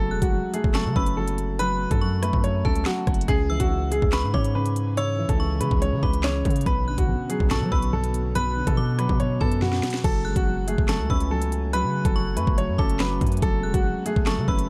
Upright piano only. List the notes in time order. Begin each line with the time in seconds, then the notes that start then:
Already playing: A4
0.22 F#4
0.54 G#4
0.75 A4
0.96 B4
1.17 A4
1.59 B4
1.91 A4
2.23 B4
2.44 C#5
2.65 A4
2.86 F#4
3.28 G#4
3.60 F#4
3.92 G#4
4.13 B4
4.34 C#5
4.55 B4
4.97 C#5
5.29 A4
5.61 B4
5.82 C#5
6.03 B4
6.24 C#5
6.66 B4
6.98 F#4
7.30 G#4
7.51 A4
7.72 B4
7.93 A4
8.35 B4
8.67 A4
8.99 B4
9.20 C#5
9.41 A4
9.62 F#4
10.04 A4
10.36 F#4
10.68 G#4
10.89 A4
11.10 B4
11.31 A4
11.73 B4
12.05 A4
12.37 B4
12.58 C#5
12.79 A4
13.00 B4
13.42 A4
13.74 F#4
14.06 G#4
14.27 A4
14.48 B4